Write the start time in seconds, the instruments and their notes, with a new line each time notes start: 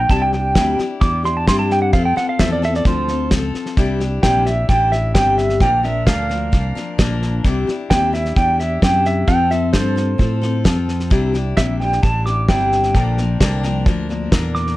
Already playing: steel-string acoustic guitar A#2 F3 A#3 A#4
0.00 pedal steel guitar G5
0.10 fingered electric bass C2, steel-string acoustic guitar C3 G3 D4 E4 G4, pedal steel guitar A5, kick, snare
0.22 pedal steel guitar G5
0.33 steel-string acoustic guitar D4 E4 G4, pedal steel guitar G5, snare
0.55 fingered electric bass D2, steel-string acoustic guitar C3 G3 D4 E4 G4, kick, snare, hi-hat pedal
0.79 steel-string acoustic guitar D4 E4 G4, muted fingered electric bass stroke, snare
1.01 fingered electric bass E2, steel-string acoustic guitar G3 D4 E4 G4, pedal steel guitar D6, kick, snare
1.24 steel-string acoustic guitar D4 E4 G4, pedal steel guitar C6, snare
1.37 pedal steel guitar A5
1.47 fingered electric bass G2, steel-string acoustic guitar C3 G3 D4 E4 G4, pedal steel guitar C6, kick, snare, hi-hat pedal
1.59 pedal steel guitar A5
1.71 pedal steel guitar G5, snare
1.82 pedal steel guitar F#5
1.93 fingered electric bass F2, steel-string acoustic guitar F3 C4 F4 A4, pedal steel guitar F5, kick, snare
2.05 pedal steel guitar G5
2.16 steel-string acoustic guitar C4 F4 A4, pedal steel guitar F#5, muted fingered electric bass stroke, snare
2.29 pedal steel guitar F5
2.39 fingered electric bass E2, steel-string acoustic guitar F3 C4 F4 A4, pedal steel guitar E5, kick, snare, hi-hat pedal
2.52 pedal steel guitar D5
2.62 steel-string acoustic guitar C4 F4 A4, pedal steel guitar E5, snare
2.74 pedal steel guitar D5, snare
2.85 fingered electric bass D2, steel-string acoustic guitar F3 C4 F4 A4, pedal steel guitar C5, kick, snare
3.08 steel-string acoustic guitar C4 F4 A4, snare
3.31 fingered electric bass C#2, steel-string acoustic guitar F3 C4 F4 A4, kick, snare, hi-hat pedal
3.54 snare
3.66 snare
3.77 fingered electric bass C2, steel-string acoustic guitar C3 G3 D4 E4 G4, kick, snare
4.00 steel-string acoustic guitar D4 E4 G4, snare
4.23 fingered electric bass A#1, steel-string acoustic guitar C3 G3 D4 E4 G4, pedal steel guitar G5, kick, snare, hi-hat pedal
4.46 steel-string acoustic guitar D4 E4 G4, pedal steel guitar E5, snare
4.69 fingered electric bass A1, steel-string acoustic guitar G3 D4 E4 G4, pedal steel guitar G5, kick, snare
4.92 steel-string acoustic guitar D4 E4 G4, pedal steel guitar E5, snare
5.15 fingered electric bass G1, steel-string acoustic guitar C3 G3 D4 E4 G4, pedal steel guitar G5, kick, snare, hi-hat pedal
5.38 pedal steel guitar E5, snare
5.50 snare
5.61 fingered electric bass A#1, steel-string acoustic guitar A#2 D3 F3 A#3 D4 A#4, pedal steel guitar G5, kick, snare
5.83 steel-string acoustic guitar F3 A#3 D4 A#4, pedal steel guitar E5, snare
6.07 fingered electric bass D2, steel-string acoustic guitar A#2 D3 F3 A#3 D4 A#4, pedal steel guitar F5, kick, snare, hi-hat pedal
6.29 steel-string acoustic guitar F3 A#3 D4 A#4, snare
6.52 fingered electric bass C2, steel-string acoustic guitar F3 A#3 D4 A#4, kick, snare
6.75 steel-string acoustic guitar F3 A#3 D4 A#4, snare
6.98 fingered electric bass A#1, steel-string acoustic guitar A#2 D3 F3 A#3 D4 A#4, kick, snare, hi-hat pedal
7.22 snare
7.44 fingered electric bass C2, steel-string acoustic guitar C3 G3 D4 E4 G4, kick, snare
7.67 steel-string acoustic guitar D4 E4 G4, snare
7.90 fingered electric bass D#2, steel-string acoustic guitar C3 G3 D4 E4 G4, pedal steel guitar G5, kick, snare, hi-hat pedal
8.13 steel-string acoustic guitar D4 E4 G4, pedal steel guitar E5, snare
8.25 snare
8.36 fingered electric bass E2, steel-string acoustic guitar G3 D4 E4 G4, pedal steel guitar G5, kick, snare
8.59 steel-string acoustic guitar D4 E4 G4, pedal steel guitar E5, snare
8.82 fingered electric bass F#2, steel-string acoustic guitar C3 D4 E4 G4, pedal steel guitar G5, kick, snare, hi-hat pedal
9.05 pedal steel guitar E5, snare
9.27 fingered electric bass F2, steel-string acoustic guitar F3 C4 F4 A4, pedal steel guitar G5, kick, snare
9.50 steel-string acoustic guitar C4 F4 A4, pedal steel guitar E5, snare
9.73 fingered electric bass G2, steel-string acoustic guitar F3 C4 F4 A4, pedal steel guitar C5, kick, snare, hi-hat pedal
9.96 steel-string acoustic guitar C4 F4 A4, snare
10.18 fingered electric bass A2, steel-string acoustic guitar F3 C4 F4 A4, kick, snare
10.42 steel-string acoustic guitar C4 F4 A4, snare
10.64 fingered electric bass F2, steel-string acoustic guitar F3 C4 F4 A4, kick, snare, hi-hat pedal
10.88 snare
11.00 snare
11.10 fingered electric bass C2, steel-string acoustic guitar C3 G3 D4 E4 G4, kick, snare
11.34 steel-string acoustic guitar D4 E4 G4, snare
11.57 fingered electric bass A#1, steel-string acoustic guitar C3 G3 D4 E4 G4, pedal steel guitar E5, kick, snare, hi-hat pedal
11.80 steel-string acoustic guitar D4 E4 G4, pedal steel guitar G5, snare
11.92 snare
12.02 fingered electric bass A1, steel-string acoustic guitar G3 D4 E4 G4, pedal steel guitar A5, kick, snare
12.26 steel-string acoustic guitar D4 E4 G4, pedal steel guitar D6, snare
12.49 fingered electric bass G1, steel-string acoustic guitar C3 G3 D4 E4 G4, pedal steel guitar G5, kick, snare, hi-hat pedal
12.72 snare
12.83 snare
12.94 fingered electric bass A#1, steel-string acoustic guitar A#2 D3 F3 A#3 D4 A#4, kick, snare
13.18 steel-string acoustic guitar F3 A#3 D4 A#4, snare
13.40 fingered electric bass C2, steel-string acoustic guitar A#2 D3 F3 A#3 D4 A#4, kick, snare, hi-hat pedal
13.63 steel-string acoustic guitar F3 A#3 D4 A#4, snare
13.86 fingered electric bass D2, steel-string acoustic guitar F3 A#3 D4 A#4, kick, snare
14.09 steel-string acoustic guitar F3 A#3 D4 A#4, snare
14.32 fingered electric bass E2, steel-string acoustic guitar A#2 D3 A#3 D4 A#4, kick, snare, hi-hat pedal
14.55 pedal steel guitar D6, snare
14.67 snare